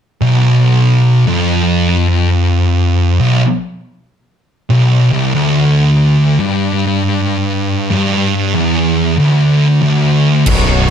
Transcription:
0, 0, Header, 1, 5, 480
1, 0, Start_track
1, 0, Tempo, 641711
1, 156, Time_signature, 4, 2, 24, 8
1, 8155, End_track
2, 0, Start_track
2, 0, Title_t, "Tonewheel organ"
2, 0, Program_c, 0, 16
2, 7834, Note_on_c, 0, 66, 62
2, 7834, Note_on_c, 0, 73, 79
2, 7838, Note_on_c, 0, 59, 70
2, 8155, Note_off_c, 0, 59, 0
2, 8155, Note_off_c, 0, 66, 0
2, 8155, Note_off_c, 0, 73, 0
2, 8155, End_track
3, 0, Start_track
3, 0, Title_t, "Distorted electric guitar"
3, 0, Program_c, 1, 30
3, 161, Note_on_c, 1, 35, 102
3, 942, Note_off_c, 1, 35, 0
3, 955, Note_on_c, 1, 41, 81
3, 2383, Note_off_c, 1, 41, 0
3, 2392, Note_on_c, 1, 35, 98
3, 2553, Note_off_c, 1, 35, 0
3, 3519, Note_on_c, 1, 35, 104
3, 3820, Note_off_c, 1, 35, 0
3, 3833, Note_on_c, 1, 36, 103
3, 3993, Note_off_c, 1, 36, 0
3, 4001, Note_on_c, 1, 38, 106
3, 4781, Note_off_c, 1, 38, 0
3, 4788, Note_on_c, 1, 43, 81
3, 5905, Note_off_c, 1, 43, 0
3, 5914, Note_on_c, 1, 43, 104
3, 6385, Note_off_c, 1, 43, 0
3, 6388, Note_on_c, 1, 40, 99
3, 6860, Note_off_c, 1, 40, 0
3, 6863, Note_on_c, 1, 38, 96
3, 7336, Note_off_c, 1, 38, 0
3, 7345, Note_on_c, 1, 38, 94
3, 7823, Note_off_c, 1, 38, 0
3, 7834, Note_on_c, 1, 35, 111
3, 8155, Note_off_c, 1, 35, 0
3, 8155, End_track
4, 0, Start_track
4, 0, Title_t, "Fingered electric bass"
4, 0, Program_c, 2, 33
4, 7829, Note_on_c, 2, 23, 93
4, 8155, Note_off_c, 2, 23, 0
4, 8155, End_track
5, 0, Start_track
5, 0, Title_t, "Drums"
5, 7824, Note_on_c, 9, 49, 127
5, 7831, Note_on_c, 9, 36, 106
5, 7899, Note_off_c, 9, 49, 0
5, 7906, Note_off_c, 9, 36, 0
5, 8155, End_track
0, 0, End_of_file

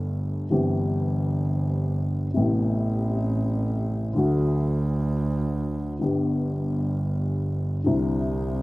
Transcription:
0, 0, Header, 1, 3, 480
1, 0, Start_track
1, 0, Key_signature, 1, "major"
1, 0, Tempo, 500000
1, 8278, End_track
2, 0, Start_track
2, 0, Title_t, "Upright piano"
2, 0, Program_c, 0, 0
2, 0, Note_on_c, 0, 31, 58
2, 0, Note_on_c, 0, 43, 60
2, 0, Note_on_c, 0, 55, 49
2, 0, Note_on_c, 0, 57, 47
2, 0, Note_on_c, 0, 62, 44
2, 0, Note_on_c, 0, 69, 51
2, 410, Note_off_c, 0, 55, 0
2, 412, Note_off_c, 0, 57, 0
2, 418, Note_off_c, 0, 31, 0
2, 418, Note_off_c, 0, 43, 0
2, 422, Note_off_c, 0, 62, 0
2, 428, Note_off_c, 0, 69, 0
2, 478, Note_on_c, 0, 52, 50
2, 487, Note_on_c, 0, 55, 48
2, 494, Note_on_c, 0, 43, 57
2, 499, Note_on_c, 0, 60, 48
2, 500, Note_on_c, 0, 31, 64
2, 508, Note_on_c, 0, 67, 58
2, 2163, Note_off_c, 0, 52, 0
2, 2167, Note_off_c, 0, 55, 0
2, 2170, Note_off_c, 0, 43, 0
2, 2173, Note_off_c, 0, 60, 0
2, 2174, Note_off_c, 0, 31, 0
2, 2178, Note_off_c, 0, 67, 0
2, 2245, Note_on_c, 0, 48, 54
2, 2263, Note_on_c, 0, 57, 46
2, 2268, Note_on_c, 0, 45, 61
2, 2274, Note_on_c, 0, 33, 60
2, 2279, Note_on_c, 0, 59, 48
2, 2294, Note_on_c, 0, 64, 58
2, 3911, Note_off_c, 0, 48, 0
2, 3920, Note_off_c, 0, 57, 0
2, 3922, Note_off_c, 0, 45, 0
2, 3926, Note_off_c, 0, 33, 0
2, 3928, Note_off_c, 0, 59, 0
2, 3936, Note_off_c, 0, 64, 0
2, 3981, Note_on_c, 0, 50, 50
2, 3996, Note_off_c, 0, 50, 0
2, 3996, Note_on_c, 0, 54, 47
2, 3997, Note_on_c, 0, 38, 63
2, 4004, Note_on_c, 0, 50, 59
2, 4008, Note_on_c, 0, 57, 49
2, 4014, Note_on_c, 0, 66, 58
2, 5686, Note_off_c, 0, 38, 0
2, 5686, Note_off_c, 0, 54, 0
2, 5690, Note_off_c, 0, 50, 0
2, 5692, Note_off_c, 0, 57, 0
2, 5695, Note_off_c, 0, 66, 0
2, 5752, Note_on_c, 0, 50, 52
2, 5769, Note_on_c, 0, 55, 46
2, 5777, Note_on_c, 0, 31, 63
2, 5778, Note_on_c, 0, 43, 57
2, 5789, Note_on_c, 0, 59, 47
2, 5796, Note_on_c, 0, 67, 55
2, 7454, Note_off_c, 0, 50, 0
2, 7463, Note_off_c, 0, 55, 0
2, 7467, Note_off_c, 0, 31, 0
2, 7467, Note_off_c, 0, 43, 0
2, 7473, Note_off_c, 0, 59, 0
2, 7477, Note_off_c, 0, 67, 0
2, 7526, Note_on_c, 0, 50, 56
2, 7545, Note_on_c, 0, 55, 47
2, 7549, Note_on_c, 0, 48, 61
2, 7550, Note_on_c, 0, 36, 62
2, 7553, Note_on_c, 0, 60, 48
2, 7567, Note_on_c, 0, 64, 56
2, 8278, Note_off_c, 0, 36, 0
2, 8278, Note_off_c, 0, 48, 0
2, 8278, Note_off_c, 0, 50, 0
2, 8278, Note_off_c, 0, 55, 0
2, 8278, Note_off_c, 0, 60, 0
2, 8278, Note_off_c, 0, 64, 0
2, 8278, End_track
3, 0, Start_track
3, 0, Title_t, "Double bass"
3, 0, Program_c, 1, 43
3, 0, Note_on_c, 1, 31, 70
3, 419, Note_off_c, 1, 31, 0
3, 513, Note_on_c, 1, 31, 75
3, 2180, Note_off_c, 1, 31, 0
3, 2259, Note_on_c, 1, 33, 77
3, 3918, Note_off_c, 1, 33, 0
3, 4004, Note_on_c, 1, 38, 77
3, 5690, Note_off_c, 1, 38, 0
3, 5786, Note_on_c, 1, 31, 72
3, 7471, Note_off_c, 1, 31, 0
3, 7558, Note_on_c, 1, 36, 78
3, 8278, Note_off_c, 1, 36, 0
3, 8278, End_track
0, 0, End_of_file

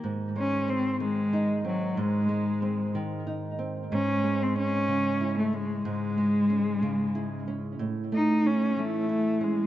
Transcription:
0, 0, Header, 1, 3, 480
1, 0, Start_track
1, 0, Tempo, 647249
1, 24, Time_signature, 6, 3, 24, 8
1, 7169, End_track
2, 0, Start_track
2, 0, Title_t, "Cello"
2, 0, Program_c, 0, 42
2, 287, Note_on_c, 0, 61, 78
2, 516, Note_on_c, 0, 60, 78
2, 527, Note_off_c, 0, 61, 0
2, 748, Note_off_c, 0, 60, 0
2, 753, Note_on_c, 0, 56, 75
2, 1199, Note_off_c, 0, 56, 0
2, 1238, Note_on_c, 0, 54, 67
2, 1473, Note_on_c, 0, 56, 71
2, 1484, Note_off_c, 0, 54, 0
2, 2189, Note_off_c, 0, 56, 0
2, 2918, Note_on_c, 0, 61, 90
2, 3281, Note_on_c, 0, 60, 82
2, 3292, Note_off_c, 0, 61, 0
2, 3393, Note_off_c, 0, 60, 0
2, 3400, Note_on_c, 0, 61, 88
2, 3963, Note_off_c, 0, 61, 0
2, 3993, Note_on_c, 0, 57, 66
2, 4110, Note_on_c, 0, 56, 74
2, 4121, Note_off_c, 0, 57, 0
2, 4347, Note_off_c, 0, 56, 0
2, 4351, Note_on_c, 0, 56, 75
2, 5517, Note_off_c, 0, 56, 0
2, 6044, Note_on_c, 0, 63, 80
2, 6278, Note_on_c, 0, 61, 80
2, 6289, Note_off_c, 0, 63, 0
2, 6515, Note_on_c, 0, 57, 82
2, 6526, Note_off_c, 0, 61, 0
2, 6991, Note_on_c, 0, 56, 72
2, 7002, Note_off_c, 0, 57, 0
2, 7169, Note_off_c, 0, 56, 0
2, 7169, End_track
3, 0, Start_track
3, 0, Title_t, "Nylon-string guitar"
3, 0, Program_c, 1, 24
3, 0, Note_on_c, 1, 51, 56
3, 27, Note_on_c, 1, 44, 62
3, 264, Note_on_c, 1, 56, 48
3, 504, Note_on_c, 1, 60, 49
3, 740, Note_off_c, 1, 51, 0
3, 743, Note_on_c, 1, 51, 54
3, 987, Note_on_c, 1, 63, 54
3, 1211, Note_off_c, 1, 60, 0
3, 1220, Note_on_c, 1, 60, 46
3, 1454, Note_off_c, 1, 44, 0
3, 1463, Note_on_c, 1, 44, 67
3, 1693, Note_off_c, 1, 56, 0
3, 1696, Note_on_c, 1, 56, 48
3, 1934, Note_off_c, 1, 60, 0
3, 1943, Note_on_c, 1, 60, 50
3, 2177, Note_off_c, 1, 51, 0
3, 2186, Note_on_c, 1, 51, 60
3, 2415, Note_off_c, 1, 63, 0
3, 2423, Note_on_c, 1, 63, 57
3, 2651, Note_off_c, 1, 60, 0
3, 2660, Note_on_c, 1, 60, 49
3, 2897, Note_off_c, 1, 44, 0
3, 2906, Note_on_c, 1, 44, 65
3, 2951, Note_off_c, 1, 60, 0
3, 2952, Note_off_c, 1, 63, 0
3, 2954, Note_off_c, 1, 51, 0
3, 3139, Note_off_c, 1, 56, 0
3, 3142, Note_on_c, 1, 56, 51
3, 3379, Note_on_c, 1, 61, 51
3, 3617, Note_on_c, 1, 49, 56
3, 3860, Note_on_c, 1, 64, 56
3, 4097, Note_off_c, 1, 61, 0
3, 4100, Note_on_c, 1, 61, 49
3, 4330, Note_off_c, 1, 44, 0
3, 4339, Note_on_c, 1, 44, 70
3, 4572, Note_off_c, 1, 56, 0
3, 4580, Note_on_c, 1, 56, 50
3, 4816, Note_off_c, 1, 61, 0
3, 4819, Note_on_c, 1, 61, 50
3, 5052, Note_off_c, 1, 49, 0
3, 5061, Note_on_c, 1, 49, 54
3, 5299, Note_off_c, 1, 64, 0
3, 5302, Note_on_c, 1, 64, 53
3, 5541, Note_off_c, 1, 61, 0
3, 5544, Note_on_c, 1, 61, 46
3, 5776, Note_off_c, 1, 44, 0
3, 5779, Note_on_c, 1, 45, 66
3, 5829, Note_off_c, 1, 49, 0
3, 5829, Note_off_c, 1, 56, 0
3, 6022, Note_on_c, 1, 57, 53
3, 6261, Note_off_c, 1, 61, 0
3, 6264, Note_on_c, 1, 61, 49
3, 6500, Note_on_c, 1, 52, 56
3, 6737, Note_off_c, 1, 64, 0
3, 6740, Note_on_c, 1, 64, 56
3, 6969, Note_off_c, 1, 61, 0
3, 6978, Note_on_c, 1, 61, 50
3, 7169, Note_off_c, 1, 45, 0
3, 7169, Note_off_c, 1, 52, 0
3, 7169, Note_off_c, 1, 57, 0
3, 7169, Note_off_c, 1, 61, 0
3, 7169, Note_off_c, 1, 64, 0
3, 7169, End_track
0, 0, End_of_file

